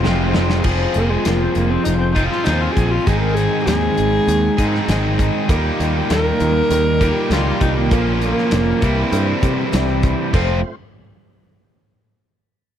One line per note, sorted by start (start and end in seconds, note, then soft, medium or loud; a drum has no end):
0.00 0.63 F2 medium
0.00 0.64 G#3 medium
0.00 0.64 C4 medium
0.00 0.32 F4 medium
0.00 0.64 F4 medium
0.00 0.64 C5 medium
0.04 0.33 F1 medium
0.04 0.63 C3 medium
0.04 0.35 F3 medium
0.04 0.36 G#3 medium
0.04 0.36 C4 medium
0.04 0.35 F4 medium
0.04 snare medium
0.04 cowbell medium
0.33 0.64 F1 medium
0.33 0.62 F3 medium
0.33 0.66 C4 medium
0.33 0.66 F4 medium
0.33 snare loud
0.33 cowbell medium
0.38 0.67 F3 medium
0.38 0.67 G#3 medium
0.50 snare medium
0.63 0.85 F1 medium
0.63 0.97 F2 medium
0.63 2.14 F3 medium
0.63 2.14 C4 medium
0.63 2.14 G#4 loud
0.63 kick loud
0.63 crash loud
0.68 0.97 C3 medium
0.68 0.97 F3 medium
0.68 0.96 G#3 medium
0.68 0.96 C4 medium
0.68 0.95 F4 loud
0.94 1.16 F1 medium
0.94 1.25 G#3 soft
0.94 1.11 A#3 loud
0.94 1.25 C4 soft
0.94 1.26 F4 medium
0.94 closed hi-hat medium
1.10 1.28 G#3 medium
1.25 1.46 F1 medium
1.25 1.56 F2 medium
1.25 1.56 C3 medium
1.25 1.56 F3 medium
1.25 1.55 G#3 medium
1.25 1.43 A#3 medium
1.25 1.55 C4 medium
1.25 1.54 F4 medium
1.25 snare loud
1.25 closed hi-hat loud
1.42 1.54 C4 medium
1.55 1.76 F1 medium
1.55 1.83 F3 soft
1.55 1.84 G#3 soft
1.55 1.72 A#3 medium
1.55 1.86 C4 soft
1.55 1.86 F4 soft
1.55 closed hi-hat medium
1.70 1.85 C4 medium
1.84 2.27 F1 medium
1.84 2.16 F3 medium
1.84 2.14 G#3 medium
1.84 2.14 C4 medium
1.84 1.98 D#4 medium
1.84 closed hi-hat medium
1.88 2.13 F4 medium
1.98 2.14 C4 medium
2.14 2.44 F3 soft
2.14 2.44 G#3 medium
2.14 2.44 C4 soft
2.14 2.28 D#4 medium
2.14 2.45 F4 medium
2.14 2.45 G#4 medium
2.14 kick medium
2.14 closed hi-hat medium
2.28 2.45 F4 medium
2.28 snare soft
2.44 2.67 D#2 medium
2.44 2.76 F2 medium
2.44 2.76 C3 medium
2.44 2.76 F3 medium
2.44 2.75 G#3 medium
2.44 2.75 C4 medium
2.44 2.62 D#4 medium
2.44 2.73 F4 medium
2.44 snare loud
2.44 closed hi-hat medium
2.49 3.07 G#4 medium
2.61 2.74 F4 medium
2.74 2.97 A#1 medium
2.74 3.07 F3 soft
2.74 3.06 G#3 medium
2.74 3.07 C4 medium
2.74 3.06 F4 medium
2.74 2.92 G#4 medium
2.74 kick medium
2.74 closed hi-hat medium
2.91 3.08 F4 medium
3.06 3.48 G#1 medium
3.06 3.37 G#2 medium
3.06 3.37 D#3 medium
3.06 3.38 G#3 medium
3.06 3.37 C4 medium
3.06 3.36 D#4 medium
3.06 3.21 G#4 medium
3.06 3.35 G#4 medium
3.06 kick loud
3.06 closed hi-hat medium
3.22 3.36 A#4 medium
3.34 3.67 D#4 medium
3.34 3.64 G#4 loud
3.34 3.67 G#4 soft
3.34 closed hi-hat medium
3.39 3.66 G#3 soft
3.39 3.66 C4 soft
3.64 3.88 D#2 medium
3.64 3.97 G#2 medium
3.64 3.98 D#3 medium
3.64 3.97 G#3 medium
3.64 3.97 C4 medium
3.64 3.95 D#4 medium
3.64 4.84 G#4 loud
3.64 3.95 G#4 medium
3.64 snare loud
3.64 closed hi-hat medium
3.96 4.19 G#1 medium
3.96 4.26 G#3 soft
3.96 4.27 C4 soft
3.96 4.28 D#4 soft
3.96 4.27 G#4 soft
3.96 closed hi-hat medium
4.27 4.48 D#2 medium
4.27 4.58 G#3 medium
4.27 4.59 C4 medium
4.27 4.58 D#4 medium
4.27 4.58 G#4 medium
4.27 closed hi-hat medium
4.58 4.79 G#2 medium
4.58 4.87 G#2 medium
4.58 4.88 D#3 medium
4.58 4.90 G#3 soft
4.58 4.90 C4 medium
4.58 4.89 D#4 medium
4.58 4.89 G#4 medium
4.58 kick medium
4.58 closed hi-hat medium
4.75 snare soft
4.89 5.29 G#1 medium
4.89 5.20 G#2 medium
4.89 5.20 D#3 medium
4.89 5.20 G#3 loud
4.89 5.19 C4 medium
4.89 5.18 D#4 loud
4.89 5.17 G#4 loud
4.89 snare loud
4.89 closed hi-hat loud
5.18 5.51 G#3 medium
5.18 5.50 C4 medium
5.18 5.50 D#4 medium
5.18 5.49 G#4 medium
5.18 kick medium
5.18 closed hi-hat medium
5.49 5.70 D#2 medium
5.49 5.80 D#3 medium
5.49 7.90 G3 medium
5.49 5.81 G3 medium
5.49 5.81 A#3 medium
5.49 7.90 D#4 medium
5.49 5.81 D#4 medium
5.49 7.89 F4 medium
5.49 5.80 F4 medium
5.49 7.00 G4 loud
5.49 7.90 A#4 medium
5.49 kick loud
5.49 closed hi-hat medium
5.49 cowbell medium
5.80 6.00 D#2 medium
5.80 6.11 D#4 medium
5.80 6.11 F4 medium
5.80 closed hi-hat medium
5.84 6.10 A#3 medium
6.10 6.31 D#2 medium
6.10 6.40 D#3 medium
6.10 6.41 G3 medium
6.10 6.41 A#3 medium
6.10 6.41 D#4 medium
6.10 6.39 F4 medium
6.10 7.33 A#4 loud
6.10 snare loud
6.10 closed hi-hat loud
6.10 cowbell medium
6.40 6.61 D#2 medium
6.40 6.71 A#3 soft
6.40 6.72 D#4 soft
6.40 6.71 F4 medium
6.40 closed hi-hat medium
6.70 7.11 D#2 medium
6.70 7.01 G3 medium
6.70 7.02 A#3 medium
6.70 7.03 D#4 medium
6.70 7.01 F4 medium
6.70 closed hi-hat medium
6.70 cowbell medium
7.01 7.30 D#3 medium
7.01 7.31 G3 medium
7.01 7.33 D#4 medium
7.01 7.32 F4 medium
7.01 7.30 G4 medium
7.01 kick medium
7.01 closed hi-hat medium
7.01 cowbell medium
7.05 7.33 A#3 soft
7.30 7.51 C#2 loud
7.30 7.62 D#3 medium
7.30 7.62 G3 medium
7.30 7.63 A#3 medium
7.30 7.63 D#4 medium
7.30 7.63 F4 loud
7.30 7.61 F4 medium
7.30 snare loud
7.30 closed hi-hat medium
7.30 cowbell medium
7.35 7.92 G4 medium
7.61 7.91 C2 medium
7.61 7.76 D#4 medium
7.61 7.93 D#4 soft
7.61 7.92 F4 medium
7.61 kick medium
7.61 closed hi-hat medium
7.66 7.91 A#3 soft
7.79 8.22 A#3 medium
7.89 8.32 A#1 medium
7.89 8.22 A#2 medium
7.89 8.22 F3 medium
7.89 8.81 A#3 medium
7.89 8.22 A#3 medium
7.89 8.81 C#4 medium
7.89 8.23 C#4 medium
7.89 8.81 F4 medium
7.89 8.81 C#5 medium
7.89 kick loud
7.89 closed hi-hat medium
7.89 cowbell medium
7.94 8.21 F4 medium
8.22 9.41 A#3 loud
8.22 8.51 A#3 soft
8.22 8.52 C#4 medium
8.22 8.52 F4 medium
8.22 closed hi-hat medium
8.38 snare soft
8.51 8.73 F1 medium
8.51 8.82 A#2 medium
8.51 8.83 F3 medium
8.51 8.83 A#3 medium
8.51 8.82 C#4 medium
8.51 8.80 F4 medium
8.51 snare loud
8.51 closed hi-hat medium
8.51 cowbell medium
8.80 9.03 C2 medium
8.80 10.32 C3 medium
8.80 10.32 E3 medium
8.80 10.32 G3 medium
8.80 10.33 G3 medium
8.80 10.32 C4 medium
8.80 9.11 C4 soft
8.80 10.32 E4 medium
8.80 9.11 E4 medium
8.80 9.12 G4 medium
8.80 10.31 C5 medium
8.80 kick loud
8.80 closed hi-hat medium
9.11 9.33 G2 medium
9.11 9.42 G3 medium
9.11 9.42 C4 medium
9.11 9.41 E4 medium
9.11 9.40 G4 medium
9.11 closed hi-hat medium
9.11 cowbell medium
9.41 9.63 C3 medium
9.41 9.73 C4 soft
9.41 9.73 E4 medium
9.41 9.73 G4 medium
9.41 kick medium
9.41 closed hi-hat medium
9.41 cowbell medium
9.72 10.14 C2 medium
9.72 10.03 C3 loud
9.72 10.03 G3 loud
9.72 10.04 C4 loud
9.72 10.03 E4 loud
9.72 10.01 G4 loud
9.72 snare loud
9.72 closed hi-hat loud
9.72 cowbell medium
10.02 10.35 C4 medium
10.02 10.34 E4 medium
10.02 10.33 G4 medium
10.02 kick loud
10.02 closed hi-hat medium
10.33 10.62 F1 loud
10.33 10.59 F2 medium
10.33 10.59 C3 medium
10.33 10.59 F3 medium
10.33 10.75 A3 medium
10.33 10.59 A3 medium
10.33 10.76 C4 medium
10.33 10.60 C4 medium
10.33 10.75 F4 medium
10.33 10.59 F4 loud
10.33 10.75 C5 medium
10.33 kick medium
10.33 crash medium
10.33 cowbell medium
10.37 10.60 A4 medium